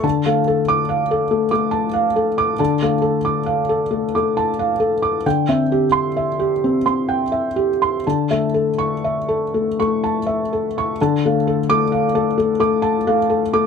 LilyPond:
<<
  \new Staff \with { instrumentName = "Felt piano" } { \time 3/4 \key d \minor \tempo 4 = 66 a''16 f''16 a'8 f''16 a'16 a16 d'''16 a''16 f''16 a'16 d'''16 | a''16 f''16 a'16 d'''16 f''16 a'16 a16 d'''16 a''16 f''16 a'16 d'''16 | g''16 e''16 g'8 e''16 g'16 c'16 c'''16 g''16 e''16 g'16 c'''16 | a''16 e''16 a'8 e''16 a'16 a16 cis'''16 a''16 e''16 a'16 cis'''16 |
a''16 f''16 a'8 f''16 a'16 a16 d'''16 a''16 f''16 a'16 d'''16 | }
  \new Staff \with { instrumentName = "Felt piano" } { \time 3/4 \key d \minor d16 a8 d'''8 r8 a8 r8. | d16 a8 r4 a8 r8. | d16 c'8 c'''8 r8 c'8 r8. | d16 a8 cis'''8 r8 a8 r8. |
d16 a8 <a d'''>8 a8 a8 a8 a16 | }
>>